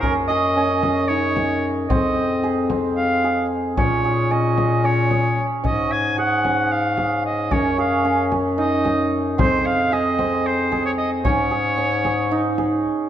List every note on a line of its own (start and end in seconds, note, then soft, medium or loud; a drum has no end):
0.00 1.86 F#2 medium
0.00 1.11 A#3 medium
0.00 0.56 C#4 medium
0.00 0.99 F4 medium
0.00 0.30 G#4 medium
0.00 0.13 A#4 medium
0.00 frame drum soft
0.28 0.83 G#4 medium
0.28 1.09 D#5 loud
0.56 1.96 C#4 medium
0.83 1.36 G#4 medium
0.83 frame drum soft
1.08 4.70 D#4 medium
1.08 1.69 C#5 medium
1.36 2.43 G#4 medium
1.36 frame drum soft
1.89 3.73 F2 medium
1.89 2.70 C4 medium
1.89 2.66 D#5 medium
1.89 frame drum medium
2.43 3.24 G#4 medium
2.70 3.83 C4 medium
2.70 frame drum soft
2.97 3.47 F5 medium
3.24 4.04 G#4 medium
3.77 5.47 A#2 medium
3.77 4.31 C#4 medium
3.77 4.33 C#5 medium
3.77 frame drum medium
4.04 4.57 G#4 medium
4.04 frame drum soft
4.31 4.84 C#4 medium
4.31 4.87 D#5 medium
4.58 5.11 G#4 medium
4.58 frame drum soft
4.84 5.63 C#4 medium
4.84 5.45 C#5 medium
5.11 6.17 G#4 medium
5.11 frame drum soft
5.38 frame drum soft
5.64 7.47 G#2 medium
5.64 6.44 C#4 medium
5.64 5.93 D#5 medium
5.64 frame drum medium
5.92 6.18 G#5 medium
6.18 6.97 G#4 medium
6.18 6.73 F#5 medium
6.44 7.51 C#4 medium
6.44 frame drum soft
6.71 7.25 F5 medium
6.97 7.78 G#4 medium
6.97 frame drum soft
7.26 7.54 D#5 medium
7.51 9.34 F#2 medium
7.51 8.04 C#4 medium
7.51 7.78 C#5 medium
7.51 frame drum soft
7.78 8.31 G#4 medium
7.78 8.28 F5 medium
8.05 9.44 C#4 medium
8.32 8.84 G#4 medium
8.32 frame drum soft
8.58 12.18 D#4 medium
8.58 9.15 D#5 medium
8.85 9.92 G#4 medium
8.85 frame drum soft
9.38 11.21 F2 medium
9.38 10.18 C4 medium
9.38 9.68 C5 medium
9.38 frame drum medium
9.66 9.94 F5 medium
9.92 10.71 G#4 medium
9.92 10.48 D#5 medium
10.19 11.31 C4 medium
10.19 frame drum soft
10.46 10.85 C5 medium
10.72 11.50 G#4 medium
10.72 frame drum soft
10.86 10.91 C#5 medium
10.98 11.10 D#5 medium
11.25 12.94 G#2 medium
11.25 11.77 C#4 medium
11.25 12.54 C#5 medium
11.25 frame drum medium
11.51 12.04 G#4 medium
11.78 13.09 C#4 medium
12.05 12.58 G#4 medium
12.05 frame drum soft
12.31 13.09 D#4 medium
12.58 13.09 G#4 medium
12.58 frame drum soft
12.85 frame drum soft